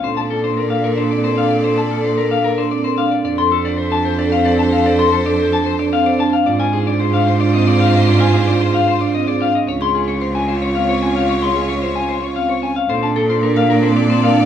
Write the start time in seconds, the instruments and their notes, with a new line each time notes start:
0.03 cello A#2, marimba D4, string section A4 D5, alto flute A4, clean electric guitar C5
0.17 marimba A4, clean electric guitar A5
0.30 marimba F4, clean electric guitar A4
0.44 marimba D4, clean electric guitar C5
0.57 clean electric guitar A#4
0.70 marimba D4, clean electric guitar F5
0.84 clean electric guitar A#4
0.97 marimba D4, clean electric guitar C5
1.11 marimba C4, clean electric guitar D5
1.24 marimba A#4, clean electric guitar C5
1.38 marimba D4, clean electric guitar F5
1.51 clean electric guitar D5
1.64 marimba D4, clean electric guitar C5
1.78 marimba A4, clean electric guitar A5
1.91 marimba F4, clean electric guitar A4
2.04 marimba D4, clean electric guitar C5
2.18 clean electric guitar A#4
2.31 marimba D4, clean electric guitar F5
2.44 clean electric guitar A#4
2.58 marimba D4, clean electric guitar C5
2.71 marimba C4, clean electric guitar D5
2.84 marimba A#4, clean electric guitar C5
2.98 marimba D4, clean electric guitar F5
3.11 clean electric guitar D5
3.25 cello F2, marimba D4, string section A4 C5, alto flute A4, clean electric guitar D5
3.38 marimba A4, clean electric guitar C6
3.52 marimba F4, clean electric guitar A4
3.65 marimba D4, clean electric guitar D5
3.78 clean electric guitar C5
3.92 marimba D4, clean electric guitar A5
4.05 clean electric guitar C5
4.19 marimba D4, clean electric guitar D5
4.32 marimba C4, clean electric guitar F5
4.45 marimba C5, clean electric guitar D5
4.59 marimba D4, clean electric guitar A5
4.72 clean electric guitar F5
4.86 marimba D4, clean electric guitar D5
4.99 marimba A4, clean electric guitar C6
5.12 marimba F4, clean electric guitar A4
5.26 marimba D4, clean electric guitar D5
5.39 clean electric guitar C5
5.53 marimba D4, clean electric guitar A5
5.66 clean electric guitar C5
5.79 marimba D4, clean electric guitar D5
5.93 marimba C4, clean electric guitar F5
6.06 marimba C5, clean electric guitar D5
6.19 marimba D4, clean electric guitar A5
6.33 clean electric guitar F5
6.46 cello G#2, marimba D4, alto flute F4, string section F4 C5, clean electric guitar D5
6.60 marimba F4, clean electric guitar G#5
6.73 marimba D#4, clean electric guitar G#4
6.86 marimba D4, clean electric guitar D5
7.00 marimba G#4, clean electric guitar C5
7.13 marimba D4, clean electric guitar F5
7.27 clean electric guitar C5
7.40 marimba D4, clean electric guitar D5
7.53 marimba C4, clean electric guitar D#5
7.67 marimba G#4, clean electric guitar D5
7.80 marimba D4, clean electric guitar F5
7.94 clean electric guitar D#5
8.07 marimba D4, clean electric guitar D5
8.20 marimba F4, clean electric guitar G#5
8.33 marimba D#4, clean electric guitar G#4
8.47 marimba D4, clean electric guitar D5
8.60 marimba G#4, clean electric guitar C5
8.74 marimba D4, clean electric guitar F5
8.88 clean electric guitar C5
9.01 marimba D4, clean electric guitar D5
9.14 marimba C4, clean electric guitar D#5
9.27 marimba G#4, clean electric guitar D5
9.41 marimba D4, clean electric guitar F5
9.55 clean electric guitar D#5
9.67 cello C#2, marimba C#4, string section F4 C#5, alto flute F4, clean electric guitar C#5
9.81 marimba G#4, clean electric guitar C6
9.94 marimba F4, clean electric guitar G#4
10.08 marimba C#4, clean electric guitar C#5
10.21 clean electric guitar C5, marimba C5
10.35 marimba C#4, clean electric guitar G#5
10.48 clean electric guitar C5
10.62 marimba C#4, clean electric guitar C#5
10.75 marimba C4, clean electric guitar F5
10.88 marimba C5, clean electric guitar C#5
11.02 marimba C#4, clean electric guitar G#5
11.16 clean electric guitar F5
11.29 marimba C#4, clean electric guitar C#5
11.42 marimba G#4, clean electric guitar C6
11.55 marimba F4, clean electric guitar G#4
11.69 marimba C#4, clean electric guitar C#5
11.82 marimba C5, clean electric guitar C5
11.95 marimba C#4, clean electric guitar G#5
12.09 clean electric guitar C5
12.22 marimba C#4, clean electric guitar C#5
12.36 marimba C4, clean electric guitar F5
12.49 marimba C5, clean electric guitar C#5
12.62 marimba C#4, clean electric guitar G#5
12.76 clean electric guitar F5
12.89 cello A#2, alto flute D4, marimba A4, string section A4 D5, clean electric guitar C5
13.03 marimba D4, clean electric guitar A5
13.16 marimba A4, clean electric guitar A4
13.29 marimba F4, clean electric guitar C5
13.43 marimba D4, clean electric guitar A#4
13.56 marimba A#4, clean electric guitar F5
13.70 marimba D4, clean electric guitar A#4
13.83 marimba C4, clean electric guitar C5
13.97 marimba D4, clean electric guitar D5
14.10 marimba C4, clean electric guitar C5
14.23 marimba A#4, clean electric guitar F5
14.37 marimba D4, clean electric guitar D5